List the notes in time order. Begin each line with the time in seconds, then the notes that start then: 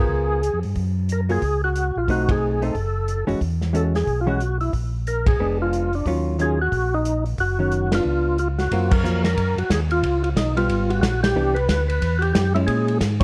Already playing: B3 G#4
0.00 F4 A#4
0.09 C#2
0.43 closed hi-hat
0.54 F2
0.63 G2, open hi-hat
0.76 F#2, kick, open hi-hat
1.09 A#4, closed hi-hat
1.29 F#3 A#3 F4 G#4, open hi-hat
1.42 C#2, kick, open hi-hat
1.64 F#4
1.76 closed hi-hat
1.96 A#1 F4
2.08 B1 A3 C4 D#4 F#4, kick, open hi-hat
2.29 G#4, kick, ride
2.62 A3 C4 D#4 A4, open hi-hat
2.74 F#1, kick, open hi-hat
3.08 closed hi-hat
3.27 F#1 E3 G#3 C#4 F#4, open hi-hat
3.41 E2, kick, open hi-hat
3.61 snare
3.73 E3 G#3 C#4 F#4 A4, closed hi-hat
3.95 G#4, snare, open hi-hat
4.07 B1, kick, open hi-hat
4.21 F4
4.27 E3 G#3 C#4 F#4
4.40 closed hi-hat
4.61 E4, open hi-hat
4.73 A#1, kick, open hi-hat
5.07 A#4, closed hi-hat
5.27 G#4, kick, ride
5.39 F1 G#3 B3 D4
5.62 F4
5.73 closed hi-hat
5.93 D4, open hi-hat
6.06 D#2 D#3 F#3 C#4 F4, kick, open hi-hat
6.39 D#3 F#3 C#4 F4 G#4, closed hi-hat
6.62 F#4
6.72 A#1, kick, open hi-hat
6.94 D#4
7.05 closed hi-hat
7.26 open hi-hat
7.38 F#1 F#4, kick, open hi-hat
7.59 D#3 F#3 C#4
7.72 closed hi-hat
7.92 B3 D4 F4, snare, ride
8.05 C#2
8.38 F4, closed hi-hat
8.58 F#4, snare, open hi-hat
8.71 F#2 F#3 A#3 C4 F4, kick, ride
8.91 A#4, kick, crash
9.04 F2 F#3 A#3 C4 F4, hi-hat pedal
9.24 A#4, snare, ride
9.37 F#2, kick, ride
9.57 F#2 F#4, ride
9.70 D#2 G#4, kick, snare, hi-hat pedal, ride
9.91 F4, ride
10.03 C#2, kick, ride
10.24 F4, ride
10.36 B1 D#4, kick, snare, hi-hat pedal, ride
10.57 G3 B3 F4, ride
10.69 G#1, kick, ride
10.90 F#4, ride
11.01 A#1 F#4, kick, snare, hi-hat pedal, ride
11.23 G4, snare, ride
11.35 C2 E3 B3 D4
11.54 B4, ride
11.68 D2, kick, snare, hi-hat pedal, ride
11.88 B4, ride
12.01 E2, kick, ride
12.19 F#4 G4, ride
12.34 F#2 G4, kick, snare, hi-hat pedal, ride
12.55 G#3 C#4 E4, ride
12.67 A#2 G#4, kick, ride
12.88 ride
13.00 G#2, kick, snare, hi-hat pedal, ride
13.20 C#4